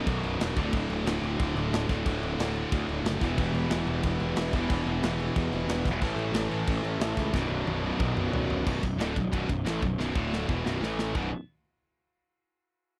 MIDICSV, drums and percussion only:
0, 0, Header, 1, 2, 480
1, 0, Start_track
1, 0, Key_signature, 2, "minor"
1, 0, Tempo, 330943
1, 1065, Time_signature, 4, 2, 24, 8
1, 18841, End_track
2, 0, Start_track
2, 0, Title_t, "Drums"
2, 97, Note_on_c, 9, 49, 93
2, 101, Note_on_c, 9, 36, 116
2, 242, Note_off_c, 9, 49, 0
2, 246, Note_off_c, 9, 36, 0
2, 342, Note_on_c, 9, 49, 67
2, 487, Note_off_c, 9, 49, 0
2, 585, Note_on_c, 9, 49, 95
2, 598, Note_on_c, 9, 38, 116
2, 730, Note_off_c, 9, 49, 0
2, 743, Note_off_c, 9, 38, 0
2, 822, Note_on_c, 9, 36, 94
2, 823, Note_on_c, 9, 49, 72
2, 967, Note_off_c, 9, 36, 0
2, 968, Note_off_c, 9, 49, 0
2, 1057, Note_on_c, 9, 49, 98
2, 1059, Note_on_c, 9, 36, 124
2, 1202, Note_off_c, 9, 49, 0
2, 1204, Note_off_c, 9, 36, 0
2, 1304, Note_on_c, 9, 49, 74
2, 1449, Note_off_c, 9, 49, 0
2, 1545, Note_on_c, 9, 49, 92
2, 1558, Note_on_c, 9, 38, 121
2, 1690, Note_off_c, 9, 49, 0
2, 1703, Note_off_c, 9, 38, 0
2, 1794, Note_on_c, 9, 49, 70
2, 1939, Note_off_c, 9, 49, 0
2, 2026, Note_on_c, 9, 36, 122
2, 2030, Note_on_c, 9, 49, 92
2, 2171, Note_off_c, 9, 36, 0
2, 2175, Note_off_c, 9, 49, 0
2, 2272, Note_on_c, 9, 49, 69
2, 2417, Note_off_c, 9, 49, 0
2, 2511, Note_on_c, 9, 49, 86
2, 2524, Note_on_c, 9, 38, 122
2, 2656, Note_off_c, 9, 49, 0
2, 2669, Note_off_c, 9, 38, 0
2, 2743, Note_on_c, 9, 49, 66
2, 2747, Note_on_c, 9, 36, 91
2, 2756, Note_on_c, 9, 38, 33
2, 2888, Note_off_c, 9, 49, 0
2, 2892, Note_off_c, 9, 36, 0
2, 2901, Note_off_c, 9, 38, 0
2, 2987, Note_on_c, 9, 36, 116
2, 2988, Note_on_c, 9, 49, 86
2, 3132, Note_off_c, 9, 36, 0
2, 3133, Note_off_c, 9, 49, 0
2, 3234, Note_on_c, 9, 49, 68
2, 3379, Note_off_c, 9, 49, 0
2, 3472, Note_on_c, 9, 49, 91
2, 3485, Note_on_c, 9, 38, 117
2, 3617, Note_off_c, 9, 49, 0
2, 3630, Note_off_c, 9, 38, 0
2, 3707, Note_on_c, 9, 49, 64
2, 3852, Note_off_c, 9, 49, 0
2, 3949, Note_on_c, 9, 36, 119
2, 3950, Note_on_c, 9, 49, 91
2, 4094, Note_off_c, 9, 36, 0
2, 4095, Note_off_c, 9, 49, 0
2, 4186, Note_on_c, 9, 49, 66
2, 4331, Note_off_c, 9, 49, 0
2, 4428, Note_on_c, 9, 49, 93
2, 4441, Note_on_c, 9, 38, 121
2, 4573, Note_off_c, 9, 49, 0
2, 4586, Note_off_c, 9, 38, 0
2, 4656, Note_on_c, 9, 49, 73
2, 4662, Note_on_c, 9, 36, 90
2, 4669, Note_on_c, 9, 38, 35
2, 4801, Note_off_c, 9, 49, 0
2, 4807, Note_off_c, 9, 36, 0
2, 4814, Note_off_c, 9, 38, 0
2, 4900, Note_on_c, 9, 49, 98
2, 4902, Note_on_c, 9, 36, 117
2, 5045, Note_off_c, 9, 49, 0
2, 5047, Note_off_c, 9, 36, 0
2, 5143, Note_on_c, 9, 49, 76
2, 5288, Note_off_c, 9, 49, 0
2, 5369, Note_on_c, 9, 49, 95
2, 5382, Note_on_c, 9, 38, 123
2, 5514, Note_off_c, 9, 49, 0
2, 5527, Note_off_c, 9, 38, 0
2, 5611, Note_on_c, 9, 49, 72
2, 5756, Note_off_c, 9, 49, 0
2, 5846, Note_on_c, 9, 49, 95
2, 5854, Note_on_c, 9, 36, 118
2, 5991, Note_off_c, 9, 49, 0
2, 5999, Note_off_c, 9, 36, 0
2, 6088, Note_on_c, 9, 49, 66
2, 6234, Note_off_c, 9, 49, 0
2, 6325, Note_on_c, 9, 49, 95
2, 6338, Note_on_c, 9, 38, 119
2, 6470, Note_off_c, 9, 49, 0
2, 6483, Note_off_c, 9, 38, 0
2, 6565, Note_on_c, 9, 49, 69
2, 6575, Note_on_c, 9, 36, 97
2, 6710, Note_off_c, 9, 49, 0
2, 6720, Note_off_c, 9, 36, 0
2, 6812, Note_on_c, 9, 49, 88
2, 6816, Note_on_c, 9, 36, 119
2, 6957, Note_off_c, 9, 49, 0
2, 6961, Note_off_c, 9, 36, 0
2, 7053, Note_on_c, 9, 49, 64
2, 7198, Note_off_c, 9, 49, 0
2, 7295, Note_on_c, 9, 49, 87
2, 7308, Note_on_c, 9, 38, 118
2, 7440, Note_off_c, 9, 49, 0
2, 7453, Note_off_c, 9, 38, 0
2, 7534, Note_on_c, 9, 49, 67
2, 7679, Note_off_c, 9, 49, 0
2, 7772, Note_on_c, 9, 49, 92
2, 7776, Note_on_c, 9, 36, 115
2, 7917, Note_off_c, 9, 49, 0
2, 7921, Note_off_c, 9, 36, 0
2, 8015, Note_on_c, 9, 49, 68
2, 8160, Note_off_c, 9, 49, 0
2, 8250, Note_on_c, 9, 49, 93
2, 8263, Note_on_c, 9, 38, 117
2, 8395, Note_off_c, 9, 49, 0
2, 8408, Note_off_c, 9, 38, 0
2, 8490, Note_on_c, 9, 49, 67
2, 8491, Note_on_c, 9, 36, 89
2, 8503, Note_on_c, 9, 38, 35
2, 8635, Note_off_c, 9, 49, 0
2, 8636, Note_off_c, 9, 36, 0
2, 8648, Note_off_c, 9, 38, 0
2, 8725, Note_on_c, 9, 49, 93
2, 8728, Note_on_c, 9, 36, 115
2, 8871, Note_off_c, 9, 49, 0
2, 8873, Note_off_c, 9, 36, 0
2, 8972, Note_on_c, 9, 49, 73
2, 9118, Note_off_c, 9, 49, 0
2, 9195, Note_on_c, 9, 49, 99
2, 9208, Note_on_c, 9, 38, 116
2, 9340, Note_off_c, 9, 49, 0
2, 9353, Note_off_c, 9, 38, 0
2, 9444, Note_on_c, 9, 49, 77
2, 9589, Note_off_c, 9, 49, 0
2, 9682, Note_on_c, 9, 36, 119
2, 9686, Note_on_c, 9, 49, 101
2, 9827, Note_off_c, 9, 36, 0
2, 9831, Note_off_c, 9, 49, 0
2, 9929, Note_on_c, 9, 49, 72
2, 10074, Note_off_c, 9, 49, 0
2, 10162, Note_on_c, 9, 49, 95
2, 10175, Note_on_c, 9, 38, 117
2, 10307, Note_off_c, 9, 49, 0
2, 10320, Note_off_c, 9, 38, 0
2, 10401, Note_on_c, 9, 36, 88
2, 10402, Note_on_c, 9, 49, 71
2, 10415, Note_on_c, 9, 38, 36
2, 10546, Note_off_c, 9, 36, 0
2, 10547, Note_off_c, 9, 49, 0
2, 10561, Note_off_c, 9, 38, 0
2, 10641, Note_on_c, 9, 36, 121
2, 10659, Note_on_c, 9, 38, 70
2, 10786, Note_off_c, 9, 36, 0
2, 10804, Note_off_c, 9, 38, 0
2, 11127, Note_on_c, 9, 48, 80
2, 11273, Note_off_c, 9, 48, 0
2, 11602, Note_on_c, 9, 36, 115
2, 11607, Note_on_c, 9, 47, 94
2, 11747, Note_off_c, 9, 36, 0
2, 11752, Note_off_c, 9, 47, 0
2, 11847, Note_on_c, 9, 45, 90
2, 11992, Note_off_c, 9, 45, 0
2, 12088, Note_on_c, 9, 43, 107
2, 12233, Note_off_c, 9, 43, 0
2, 12332, Note_on_c, 9, 43, 99
2, 12478, Note_off_c, 9, 43, 0
2, 12571, Note_on_c, 9, 36, 106
2, 12578, Note_on_c, 9, 57, 104
2, 12716, Note_off_c, 9, 36, 0
2, 12723, Note_off_c, 9, 57, 0
2, 12808, Note_on_c, 9, 36, 92
2, 12808, Note_on_c, 9, 51, 72
2, 12953, Note_off_c, 9, 36, 0
2, 12953, Note_off_c, 9, 51, 0
2, 13056, Note_on_c, 9, 51, 90
2, 13069, Note_on_c, 9, 38, 102
2, 13201, Note_off_c, 9, 51, 0
2, 13214, Note_off_c, 9, 38, 0
2, 13290, Note_on_c, 9, 36, 83
2, 13297, Note_on_c, 9, 51, 69
2, 13435, Note_off_c, 9, 36, 0
2, 13442, Note_off_c, 9, 51, 0
2, 13532, Note_on_c, 9, 36, 101
2, 13536, Note_on_c, 9, 51, 93
2, 13677, Note_off_c, 9, 36, 0
2, 13681, Note_off_c, 9, 51, 0
2, 13770, Note_on_c, 9, 36, 87
2, 13771, Note_on_c, 9, 51, 66
2, 13915, Note_off_c, 9, 36, 0
2, 13916, Note_off_c, 9, 51, 0
2, 14015, Note_on_c, 9, 51, 90
2, 14028, Note_on_c, 9, 38, 103
2, 14160, Note_off_c, 9, 51, 0
2, 14173, Note_off_c, 9, 38, 0
2, 14249, Note_on_c, 9, 51, 62
2, 14250, Note_on_c, 9, 36, 85
2, 14394, Note_off_c, 9, 51, 0
2, 14395, Note_off_c, 9, 36, 0
2, 14501, Note_on_c, 9, 38, 58
2, 14646, Note_off_c, 9, 38, 0
2, 14729, Note_on_c, 9, 36, 104
2, 14874, Note_off_c, 9, 36, 0
2, 14985, Note_on_c, 9, 38, 65
2, 15130, Note_off_c, 9, 38, 0
2, 15214, Note_on_c, 9, 36, 99
2, 15359, Note_off_c, 9, 36, 0
2, 15463, Note_on_c, 9, 38, 78
2, 15608, Note_off_c, 9, 38, 0
2, 15709, Note_on_c, 9, 38, 65
2, 15854, Note_off_c, 9, 38, 0
2, 15941, Note_on_c, 9, 38, 90
2, 16086, Note_off_c, 9, 38, 0
2, 16174, Note_on_c, 9, 36, 97
2, 16175, Note_on_c, 9, 57, 79
2, 16319, Note_off_c, 9, 36, 0
2, 16320, Note_off_c, 9, 57, 0
2, 18841, End_track
0, 0, End_of_file